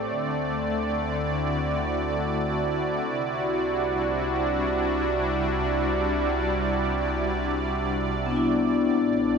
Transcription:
Already playing: A2 A3 C4 G4 A4 D5
0.10 D2 D3
1.14 E4
1.33 F#4
2.50 F#4
3.05 C2 C3
3.33 D4
3.68 G3
8.26 B3
8.31 D4
8.36 E4
8.96 A1 A2
9.34 A3

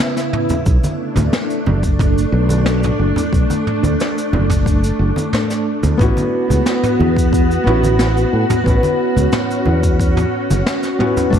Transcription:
Already playing: C#3 B3 E4
0.00 snare
0.16 snare, cabasa
0.33 mid tom
0.49 low conga, cabasa
0.66 B1 A3 D4, kick, cabasa
0.84 high conga, cabasa
1.16 D2, mid tom, low conga, cabasa
1.33 snare, cabasa
1.50 cabasa
1.66 F#1, high conga, low conga
1.83 kick, cabasa
1.99 kick, mid tom, cabasa
2.18 cabasa
2.32 B1
2.49 high conga, cabasa
2.66 snare, cabasa
2.83 mid tom, cabasa
2.99 F#1
3.16 low conga, cabasa
3.33 B1, kick, cabasa
3.50 high conga, cabasa
3.67 mid tom
3.83 D2, low conga, cabasa
4.00 snare, cabasa
4.18 cabasa
4.33 F#1, high conga, low conga
4.50 kick, mid tom, cabasa
4.66 kick, cabasa
4.84 cabasa
4.99 F#1
5.16 high conga, cabasa
5.33 snare, mid tom, cabasa
5.50 snare, cabasa
5.83 D2, low conga, cabasa
5.97 A1 B3 C#4 E4 F#4, kick, mid tom, cabasa
6.03 F#4
6.17 high conga, cabasa
6.50 C#2, low conga, cabasa
6.66 snare, cabasa
6.83 mid tom, cabasa
6.99 E2, high conga, low conga
7.17 kick, cabasa
7.33 kick, cabasa
7.51 cabasa
7.64 A1 B3 C#4 E4, mid tom
7.69 F#4
7.83 high conga, cabasa
7.99 snare, cabasa
8.17 cabasa
8.33 A2
8.50 mid tom, low conga, cabasa
8.64 A1 B3 C#4 E4, kick, cabasa
8.69 B4
8.83 high conga, cabasa
9.16 C#2, low conga, cabasa
9.32 snare, mid tom, cabasa
9.51 cabasa
9.66 E2, high conga, low conga
9.83 kick, cabasa
10.00 kick, cabasa
10.17 mid tom, cabasa
10.50 F#1, high conga, cabasa
10.66 snare, cabasa
10.83 snare, cabasa
10.99 B3 C#4 E4 F#4, mid tom
11.17 low conga, cabasa
11.30 B1 A3 C#4 D4, kick, cabasa
11.35 A3 F#4

